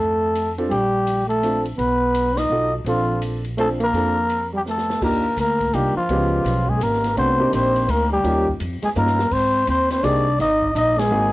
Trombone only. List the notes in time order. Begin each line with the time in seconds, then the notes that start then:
Already playing: A3
0.68 G3
1.27 A3
1.77 B3
2.36 D#4
2.85 F3
3.57 A3
3.80 A#3
4.53 G3
4.67 A3
5.03 A#3
5.39 A#3
5.76 G3
5.97 F3
6.69 G#3
6.81 A#3
7.16 C4
7.53 C4
7.88 A#3
8.12 G3
8.83 G#3
8.96 A#3
9.32 C4
9.68 C4
9.90 C4
10.03 D4
10.39 D#4
10.75 D#4
10.98 G#3